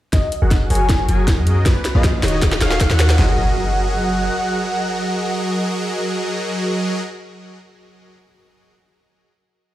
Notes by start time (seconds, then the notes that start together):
0.13 F#1 F#3 F#4 G#4 A#4 D#5, kick, snare, closed hi-hat, riser
0.32 closed hi-hat
0.42 F#1 F#3 F#4 G#4 A#4 F#5
0.51 kick, snare, closed hi-hat
0.70 F#1 F#3 F#4 G#4 A#4 C#5 G#5, open hi-hat
0.75 closed hi-hat
0.89 kick, snare, closed hi-hat
1.09 F#1 F#3 F#4 G#4 A#4 G#5, closed hi-hat
1.28 kick, snare, closed hi-hat
1.38 F#2 F#3 F#4 G#4 A#4 D#5
1.47 closed hi-hat
1.66 A#1 A#3 F4 G#4 B4 D5, kick, snare, closed hi-hat
1.85 snare, closed hi-hat
1.95 A#1 A#3 F4 G#4 B4 D#5 F5
2.04 kick, snare, closed hi-hat
2.23 D#1 D#3 D#4 F#4 C#5 D#5, snare, open hi-hat
2.28 closed hi-hat
2.42 kick, snare, closed hi-hat
2.52 snare
2.61 D#1 D#3 D#4 F#4 C#5 F5 G#5, snare, closed hi-hat
2.71 snare
2.80 kick, snare, closed hi-hat
2.90 D#2 D#3 D#4 F#4 C#5 F5 F#5, snare
3.00 snare, closed hi-hat
3.10 snare
3.19 F#1 F#3 F#4 G#4 A#4 D#5 F#5, snare, clap, floor tom, impact